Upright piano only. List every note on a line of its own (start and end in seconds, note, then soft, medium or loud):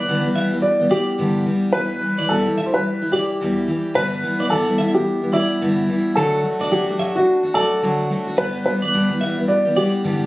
0.00 0.65 B4 medium
0.62 0.92 D5 medium
0.91 1.77 G4 medium
1.73 2.31 B4 medium
2.29 2.66 A4 medium
2.66 2.74 C5 medium
2.74 3.10 B4 medium
3.12 3.98 G4 medium
3.95 4.47 B4 medium
4.50 4.96 A4 medium
4.94 5.35 G4 medium
5.33 6.12 E4 medium
6.15 6.73 A4 medium
6.72 7.18 G4 medium
7.15 7.56 F#4 medium
7.54 8.34 A4 medium
8.38 8.64 B4 medium
8.66 9.51 B4 medium
9.48 9.77 D5 medium
9.76 10.26 G4 medium